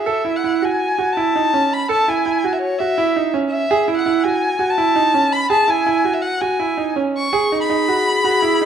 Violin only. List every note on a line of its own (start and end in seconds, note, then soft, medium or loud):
0.00 0.38 E5 medium
0.37 0.66 F#5 medium
0.65 1.13 G#5 medium
1.12 1.75 A5 medium
1.73 1.90 B5 medium
1.91 2.11 A5 medium
2.09 2.54 G#5 medium
2.53 2.60 E5 medium
2.61 2.80 C#5 medium
2.78 3.33 E5 medium
3.50 3.92 E5 medium
3.97 4.25 F#5 medium
4.24 4.71 G#5 medium
4.70 5.34 A5 loud
5.33 5.50 B5 loud
5.51 5.71 A5 loud
5.70 6.15 G#5 medium
6.14 6.24 E5 medium
6.22 6.42 F#5 medium
6.41 6.96 G#5 medium
7.17 7.59 C#6 loud
7.61 8.65 B5 loud